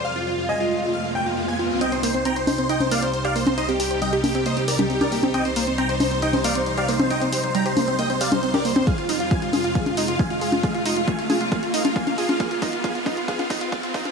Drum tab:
HH |----------------|xxoxxxoxxxoxxxox|xxo-xxoxxxoxxxox|xxoxxxoxxxoxxxox|
CG |----------------|------o--o-----o|------o----o-o-o|------o--o-----o|
BD |----------------|----------------|----------------|----------------|

HH |xxoxxxoxxxoxxxox|xxoxxxoxxxoxxxox|xxoxxxoxxxoxxxox|xxoxxxoxxxoxxxox|
CG |------o----o-o-o|------o--o-----o|------o----o-o-o|------o--o-----o|
BD |----------------|o---o---o---o---|o---o---o---o---|o-o-o-o-o-o-o-o-|